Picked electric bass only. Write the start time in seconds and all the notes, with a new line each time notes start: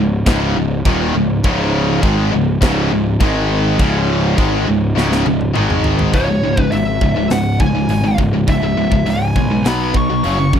Already playing: C#1
0.27 C#1
0.56 C#1
0.86 D#1
1.15 C#1
1.44 C#1
2.03 G#1
2.33 C#1
2.62 C#1
2.92 C#1
3.21 G#1
3.80 C#1
4.39 G#1
4.68 C#1
4.97 C#1
5.27 C#1
5.57 G#1
6.14 C#1
6.43 C#1
6.73 G#1
7.02 C#1
7.31 C#1
7.60 C#1
7.89 G#1
8.19 C#1
8.48 C#1
8.77 C#1
9.06 C#1
9.36 B1
9.66 B1
9.95 B1
10.25 F#1
10.54 D#1